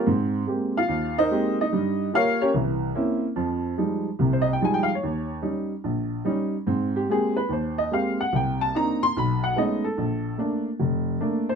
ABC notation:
X:1
M:4/4
L:1/16
Q:"Swing" 1/4=145
K:Ab
V:1 name="Upright piano"
z6 [Ff]4 [EBce]4 [Ee]2- | [Ee]4 [Bdf]2 [DGBd]2 z8 | [K:Fm] z8 z c e g a g f d- | d3 z12 z |
z2 G2 A2 =B2 c2 e2 f2 _g2 | g2 =a2 b2 c'2 =b2 ^f2 ^d2 =A2- | =A4 z8 z2 c2 |]
V:2 name="Upright piano"
[A,,C]4 [A,B,CG]2 z2 E,,4 [A,B,CG]2 z2 | [G,,G,]4 [B,FG]2 z2 [C,,=E,]4 [B,CD=E]2 z2 | [K:Fm] [F,,F,]4 [F,G,A,E]2 z2 [C,,C,]4 [F,G,A,E]2 z2 | E,,4 [G,DE]2 z2 B,,,4 [G,DE]2 z2 |
[A,,C]4 [A,B,CG]2 z2 E,,4 [A,B,CG]2 z2 | [C,,C,]4 [B,C=DE]2 z2 =B,,,4 [^G,=A,=B,^C^D]2 z2 | B,,,4 [=A,B,=D]2 z2 F,,,4 [A,B,D]2 z2 |]